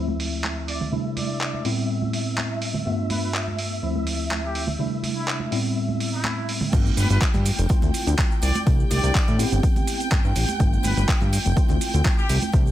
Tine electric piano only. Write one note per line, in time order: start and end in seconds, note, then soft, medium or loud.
0.00 0.87 D2 medium
0.00 0.88 F3 medium
0.00 0.88 A3 medium
0.00 0.88 C4 medium
0.00 0.88 E4 medium
0.91 1.60 C3 medium
0.91 1.60 G3 medium
0.91 1.60 A3 medium
0.91 1.60 D4 medium
0.91 1.61 E4 medium
1.64 2.81 A2 medium
1.64 2.81 G3 medium
1.64 2.81 B3 medium
1.64 2.82 C4 medium
1.64 2.82 E4 medium
2.85 3.78 G2 medium
2.85 3.78 A3 medium
2.85 3.78 B3 medium
2.85 3.78 D4 medium
2.85 3.79 F4 medium
3.82 4.75 D2 medium
3.82 4.75 F3 medium
3.82 4.75 A3 medium
3.82 4.75 C4 medium
3.82 4.75 E4 medium
4.78 5.47 C3 medium
4.78 5.47 G3 medium
4.78 5.47 A3 medium
4.78 5.47 D4 medium
4.78 5.48 E4 medium
5.51 6.68 A2 medium
5.51 6.68 G3 medium
5.51 6.68 B3 medium
5.51 6.68 C4 medium
5.51 6.69 E4 medium
6.72 7.65 A3 medium
6.72 7.65 B3 medium
6.72 7.65 D4 medium
6.72 7.65 F4 medium
7.69 8.62 A3 medium
7.69 8.62 C4 medium
7.69 8.62 E4 medium
7.69 8.62 F4 medium
8.66 9.34 A3 medium
8.66 9.34 D4 medium
8.66 9.35 E4 medium
8.66 9.35 G4 medium
9.38 10.55 B3 medium
9.38 10.55 C4 medium
9.38 10.56 E4 medium
9.38 10.56 G4 loud
10.59 11.52 A3 medium
10.59 11.52 B3 medium
10.59 11.52 D4 medium
10.59 11.53 F4 medium
11.56 12.48 A3 medium
11.56 12.49 C4 medium
11.56 12.49 E4 medium
11.56 12.49 F4 medium
12.53 12.71 A3 medium
12.53 12.71 D4 medium
12.53 12.71 E4 medium
12.53 12.71 G4 medium